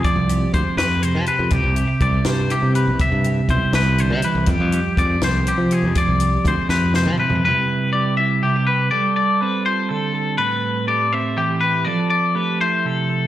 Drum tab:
HH |x-x-x-x-x-x-|x-x-x-x-x-x-|x-x-x-x-x-x-|x-x-x-x-x-x-|
SD |------o-----|------o-----|------o-----|------o-----|
T2 |------------|------------|------------|------------|
FT |------------|------------|------------|------------|
BD |o---o-------|o---o-------|o---o-------|o---o-------|

HH |x-x-x-------|------------|------------|------------|
SD |------o-o---|------------|------------|------------|
T2 |---------o--|------------|------------|------------|
FT |----------oo|------------|------------|------------|
BD |o---o-------|------------|------------|------------|

HH |------------|
SD |------------|
T2 |------------|
FT |------------|
BD |------------|